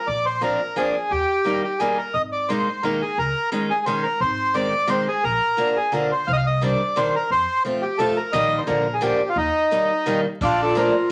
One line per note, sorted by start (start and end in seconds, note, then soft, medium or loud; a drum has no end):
0.07 0.52 A#1 medium
0.07 0.26 D5 medium
0.25 0.42 C5 medium
0.41 0.60 F3 soft
0.41 0.60 A#3 soft
0.41 0.60 C4 soft
0.41 0.60 D4 medium
0.41 0.77 A#4 medium
0.76 0.94 F3 medium
0.76 0.94 A#3 medium
0.76 0.94 C4 soft
0.76 0.94 D4 medium
0.76 1.12 G#4 medium
1.11 1.22 D#2 medium
1.11 1.62 G4 medium
1.44 1.63 D#3 soft
1.44 1.63 G3 soft
1.44 1.63 A#3 soft
1.44 1.63 D#4 medium
1.64 1.80 G4 medium
1.79 1.98 D#3 medium
1.79 1.98 G3 medium
1.79 1.98 A#3 soft
1.79 1.98 D#4 medium
1.79 1.98 G#4 medium
1.98 2.15 A#4 medium
2.14 2.59 G#1 medium
2.14 2.22 D#5 medium
2.32 2.49 D5 medium
2.49 2.67 D#3 soft
2.49 2.67 G#3 soft
2.49 2.67 A#3 soft
2.49 2.67 D#4 medium
2.49 2.84 C5 medium
2.83 3.02 D#3 medium
2.83 3.01 G#3 soft
2.83 3.02 A#3 soft
2.83 3.01 D#4 soft
2.83 3.02 A#4 medium
3.02 3.18 G#4 medium
3.18 3.29 C#2 medium
3.18 3.50 A#4 medium
3.52 3.70 D#3 medium
3.52 3.70 G#3 soft
3.52 3.70 C#4 soft
3.52 3.70 D#4 medium
3.70 3.85 G#4 medium
3.86 4.04 D#3 medium
3.86 4.05 G#3 medium
3.86 4.05 C#4 soft
3.86 4.04 D#4 medium
3.86 4.05 C5 medium
4.03 4.20 A#4 medium
4.20 4.65 G#1 medium
4.20 4.56 C5 medium
4.54 4.73 D#3 medium
4.54 4.73 G#3 soft
4.54 4.73 C4 soft
4.54 4.72 D#4 soft
4.54 4.90 D5 medium
4.87 5.06 D#3 medium
4.87 5.06 G#3 medium
4.87 5.07 C4 medium
4.87 5.06 D#4 medium
4.87 5.08 C5 medium
5.08 5.24 G#4 medium
5.24 5.36 A#1 medium
5.24 5.78 A#4 loud
5.57 5.76 D3 medium
5.57 5.76 F3 soft
5.57 5.76 A#3 soft
5.57 5.76 D4 medium
5.76 5.93 G#4 medium
5.92 6.11 D3 medium
5.92 6.11 F3 soft
5.92 6.11 A#3 soft
5.92 6.11 D4 medium
5.92 6.12 A#4 medium
6.12 6.28 C5 medium
6.27 6.72 C2 medium
6.27 6.32 F5 loud
6.33 6.37 D#5 medium
6.33 6.46 F5 medium
6.46 6.63 D#5 medium
6.61 6.80 D#3 medium
6.61 6.80 G3 soft
6.61 6.80 C4 soft
6.61 6.80 D4 medium
6.61 6.98 D5 medium
6.96 7.15 D#3 medium
6.96 7.14 G3 medium
6.96 7.15 C4 soft
6.96 7.14 D4 medium
6.96 7.15 C5 medium
7.16 7.30 A#4 medium
7.30 7.42 F2 medium
7.30 7.63 C5 loud
7.65 7.83 F3 soft
7.65 7.83 A3 soft
7.65 7.83 C4 soft
7.65 7.83 F4 medium
7.82 7.99 G4 medium
7.98 8.18 F3 medium
7.98 8.17 A3 medium
7.98 8.17 C4 soft
7.98 8.17 F4 medium
7.98 8.17 A4 medium
8.17 8.34 A#4 medium
8.32 8.56 A#1 medium
8.32 8.61 D#3 medium
8.32 8.61 G3 medium
8.32 8.61 A#3 medium
8.32 8.61 D#4 medium
8.32 8.60 D#5 loud
8.58 8.67 C5 medium
8.67 9.12 A#1 medium
8.67 8.86 D3 medium
8.67 8.86 F3 medium
8.67 8.86 A#3 soft
8.67 8.86 D4 soft
8.67 8.95 A#4 medium
8.94 9.02 G#4 medium
9.01 9.20 D3 medium
9.01 9.20 F3 medium
9.01 9.20 A#3 medium
9.01 9.20 D4 medium
9.01 9.29 G4 medium
9.29 9.37 F4 medium
9.36 9.48 D#2 medium
9.36 10.21 D#4 medium
9.71 9.90 D#3 soft
9.71 9.90 G3 medium
9.71 9.90 A#3 soft
9.71 9.90 D#4 soft
10.06 10.25 D#3 medium
10.06 10.25 G3 medium
10.06 10.25 A#3 medium
10.06 10.24 D#4 medium
10.41 10.86 A#1 medium
10.41 10.91 D4 medium
10.41 10.59 D4 medium
10.41 10.61 F4 medium
10.41 kick medium
10.41 crash medium
10.62 10.76 F4 medium
10.62 10.78 A4 medium
10.75 10.94 F3 medium
10.75 10.94 A3 soft
10.75 10.94 A#3 soft
10.75 10.94 D4 medium
10.75 11.09 F4 medium
10.75 11.12 A#4 medium
10.75 ride soft